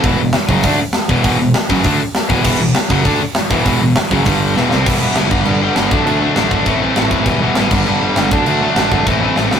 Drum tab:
CC |--------|--------|x-------|--------|
HH |o-o-o-o-|o-o-o-o-|--o-o-o-|o-o-o---|
SD |--o---o-|--o---o-|--o---o-|--o---oo|
BD |o--oo--o|o--oo--o|o--oo--o|o--oo---|

CC |x-x-x-x-|x-x-x-x-|x-xxx-x-|x-x-x---|
HH |--------|--------|--------|--------|
SD |--o---o-|--o---o-|--o---o-|--o---oo|
BD |o--o---o|---oo--o|o--o---o|---oo---|